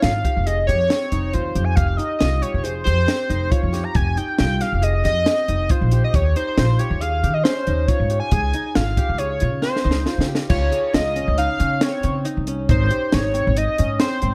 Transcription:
Already playing: qanun C4 D#4 G4
0.02 upright bass G#1, qanun F4, analog synth lead F5, snare, closed hi-hat
0.25 qanun G4, kick, closed hi-hat
0.37 upright bass F1
0.46 qanun G#4, analog synth lead D#5, closed hi-hat
0.67 upright bass F2, qanun G4, analog synth lead C#5, closed hi-hat
0.90 qanun C4, snare, closed hi-hat
1.12 upright bass F1, qanun D#4, closed hi-hat
1.33 upright bass D#2, qanun F4, analog synth lead C5, closed hi-hat
1.55 upright bass F2, qanun G4, closed hi-hat
1.64 analog synth lead G#5
1.75 upright bass F1, qanun G4, analog synth lead F5, kick, closed hi-hat
1.97 qanun D#4, analog synth lead D#5, closed hi-hat
2.19 upright bass C2, qanun F4, analog synth lead D#5, snare, closed hi-hat
2.42 qanun G4, analog synth lead C#5, closed hi-hat
2.54 upright bass F1
2.63 qanun G#4, analog synth lead C5, closed hi-hat
2.84 upright bass F2, qanun G4, analog synth lead C5, closed hi-hat
3.07 qanun C4, snare, closed hi-hat
3.29 upright bass F1, qanun D#4, closed hi-hat
3.51 qanun F4, analog synth lead C#5, kick, closed hi-hat
3.63 upright bass F2
3.73 qanun G4, snare, closed hi-hat
3.84 analog synth lead A#5
3.95 upright bass F1, qanun G4, analog synth lead G#5, kick, closed hi-hat
4.17 qanun D#4, analog synth lead G5, closed hi-hat
4.39 upright bass C2, qanun F4, analog synth lead G5, snare, closed hi-hat
4.60 qanun G4, analog synth lead F5, snare, closed hi-hat
4.73 upright bass F1
4.82 qanun G#4, analog synth lead D#5, closed hi-hat
5.04 upright bass F2, qanun G4, analog synth lead D#5, snare, closed hi-hat
5.26 qanun C4, snare, closed hi-hat
5.48 upright bass F1, qanun D#4, closed hi-hat
5.69 qanun F4, analog synth lead C5, kick, closed hi-hat
5.81 upright bass A#1
5.91 qanun G4, closed hi-hat
6.04 analog synth lead D#5
6.14 upright bass D#2, qanun G4, analog synth lead C#5, kick, closed hi-hat
6.36 qanun D#4, analog synth lead C5, closed hi-hat
6.47 analog synth lead C5
6.58 upright bass A#1, qanun F4, analog synth lead C5, snare, closed hi-hat
6.79 qanun G4, analog synth lead C#5, closed hi-hat
6.91 upright bass D#2
7.01 qanun G#4, analog synth lead F5, closed hi-hat
7.23 upright bass D#3, qanun G4, closed hi-hat
7.34 analog synth lead D#5
7.44 qanun C#4, analog synth lead C5, snare, closed hi-hat
7.67 upright bass D#2, qanun D#4, closed hi-hat
7.88 qanun F4, analog synth lead C#5, kick, closed hi-hat
8.00 upright bass G#2
8.10 qanun G4, closed hi-hat
8.20 analog synth lead G#5
8.31 upright bass C#2, qanun G#4, kick, closed hi-hat
8.54 qanun D#4, closed hi-hat
8.75 upright bass G#1, qanun F4, analog synth lead F5, snare, closed hi-hat
8.97 qanun G4, kick, closed hi-hat
9.09 upright bass C#2
9.18 qanun G#4, analog synth lead C#5, closed hi-hat
9.40 upright bass C#3, qanun F4, closed hi-hat
9.62 qanun C4, analog synth lead C5, snare
9.76 snare
9.84 upright bass C#2, qanun D#4
9.91 snare
10.06 qanun F4, snare
10.18 upright bass C#3, snare
10.28 qanun G4
10.35 snare
10.49 upright bass C#2, qanun F4, analog synth lead C#5, kick, crash
10.72 qanun G#4, closed hi-hat
10.93 upright bass C#2, qanun F4, analog synth lead D#5, snare, closed hi-hat
11.15 qanun C#4, closed hi-hat
11.28 upright bass C#2
11.37 qanun D#4, analog synth lead F5, closed hi-hat
11.59 upright bass C#3, qanun C#4, closed hi-hat
11.81 qanun C4, analog synth lead C#5, snare, closed hi-hat
12.03 upright bass C#3, qanun C4, closed hi-hat
12.25 qanun D#4, closed hi-hat
12.37 upright bass C2
12.47 qanun C#4, closed hi-hat
12.69 upright bass G#1, qanun D#4, analog synth lead C5, kick, closed hi-hat
12.91 qanun G4, closed hi-hat
13.12 upright bass G#1, qanun D#4, analog synth lead C#5, snare, closed hi-hat
13.34 qanun C4, closed hi-hat
13.47 upright bass G#1
13.56 qanun D#4, analog synth lead D#5, closed hi-hat
13.78 upright bass G#2, qanun C#4, closed hi-hat
14.00 qanun C4, analog synth lead C5, snare, closed hi-hat
14.22 upright bass G#2, qanun C4, closed hi-hat

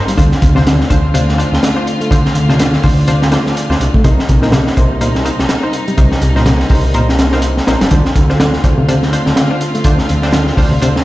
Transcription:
Already playing: string section C3 G3 A#3 D#4
0.07 reed electric piano G3, closed hi-hat
0.17 analog synth bass D2, reed electric piano D3, string section D3 A3 C4 F4, synth stab D4 F4 C5, kick, closed hi-hat
0.32 snare
0.41 analog synth bass D2, reed electric piano D3, kick, closed hi-hat
0.55 reed electric piano C3, synth stab D4 F4 C5, snare
0.66 reed electric piano D3, snare, closed hi-hat
0.81 snare
0.90 analog synth bass D2, reed electric piano D3, synth stab D4 F4 C5, kick, closed hi-hat
1.14 reed electric piano C3, synth stab D4 F4 C5, closed hi-hat
1.29 snare
1.38 synth stab D4 F4 C5, closed hi-hat
1.52 analog synth bass D2, snare
1.63 snare, closed hi-hat
1.76 synth stab D4 F4 C5
1.87 closed hi-hat
2.01 reed electric piano A3, closed hi-hat
2.11 analog synth bass D2, reed electric piano D3, synth stab D4 F4 C5, string section D4, kick, closed hi-hat
2.25 snare
2.35 analog synth bass D2, reed electric piano D3, closed hi-hat
2.49 reed electric piano C3, synth stab D4 F4 C5, snare
2.59 reed electric piano D3, snare, closed hi-hat
2.73 snare
2.83 analog synth bass D2, reed electric piano D3, synth stab D4 F4 C5, kick, open hi-hat
3.08 reed electric piano C3, synth stab D4 F4 C5, closed hi-hat
3.22 snare
3.32 synth stab D4 F4 C5, snare, closed hi-hat
3.46 snare
3.57 closed hi-hat
3.70 analog synth bass D2, synth stab D4 F4 C5, snare
3.80 analog synth bass C2, closed hi-hat
3.94 reed electric piano A3, kick
4.04 analog synth bass C2, reed electric piano C3, string section C3 G3 A#3 D#4, synth stab D#4 A#4 C5, kick, closed hi-hat
4.19 snare
4.28 analog synth bass C2, reed electric piano C3, kick, closed hi-hat
4.42 reed electric piano A#2, synth stab D#4 A#4 C5, snare
4.52 reed electric piano C3, snare, closed hi-hat
4.67 snare
4.77 analog synth bass C2, reed electric piano C3, synth stab D#4 A#4 C5, kick, closed hi-hat
5.01 reed electric piano A#2, synth stab D#4 A#4 C5, closed hi-hat
5.15 snare
5.25 synth stab D#4 A#4 C5, closed hi-hat
5.39 analog synth bass C2, snare
5.49 snare, closed hi-hat
5.63 synth stab D#4 A#4 C5
5.73 closed hi-hat
5.88 reed electric piano G3, closed hi-hat
5.98 analog synth bass C2, reed electric piano C3, string section A#3, synth stab D#4 A#4 C5, kick, closed hi-hat
6.12 snare
6.22 analog synth bass C2, reed electric piano C3, closed hi-hat
6.35 reed electric piano A#2, synth stab D#4 A#4 C5, snare
6.46 reed electric piano C3, snare, closed hi-hat
6.60 snare
6.70 analog synth bass C2, reed electric piano C3, synth stab D#4 A#4 C5, kick, open hi-hat
6.94 reed electric piano A#2, synth stab D#4 A#4 C5, closed hi-hat
7.09 snare
7.19 analog synth bass C2, snare, closed hi-hat
7.32 synth stab D#4 A#4 C5, snare
7.42 closed hi-hat
7.57 snare
7.67 analog synth bass A#1, synth stab D#4 A#4 C5, snare, closed hi-hat
7.81 analog synth bass G1, reed electric piano G3, snare, closed hi-hat
7.91 analog synth bass D2, reed electric piano D3, string section D3 A3 C4 F4, synth stab D4 F4 C5, kick, closed hi-hat
8.05 snare
8.15 analog synth bass D2, reed electric piano D3, kick, closed hi-hat
8.30 synth stab D4 F4 C5, snare
8.39 reed electric piano D3, snare, closed hi-hat
8.53 snare
8.64 analog synth bass D2, reed electric piano D3, synth stab D4 F4 C5, kick, closed hi-hat
8.78 reed electric piano C3
8.88 reed electric piano C3, synth stab D4 F4 C5, closed hi-hat
9.03 snare
9.13 synth stab D4 F4 C5, closed hi-hat
9.26 analog synth bass D2, snare
9.36 snare, closed hi-hat
9.51 synth stab D4 F4 C5
9.61 closed hi-hat
9.74 reed electric piano A3, closed hi-hat
9.84 analog synth bass D2, reed electric piano D3, synth stab D4 F4 C5, kick, closed hi-hat
9.98 snare
10.09 analog synth bass D2, reed electric piano D3, closed hi-hat
10.22 synth stab D4 F4 C5, snare
10.33 reed electric piano D3, snare, closed hi-hat
10.47 snare
10.57 analog synth bass D2, reed electric piano D3, synth stab D4 F4 C5, kick, open hi-hat
10.72 reed electric piano C3
10.82 reed electric piano C3, synth stab D4 F4 C5, closed hi-hat
10.96 snare

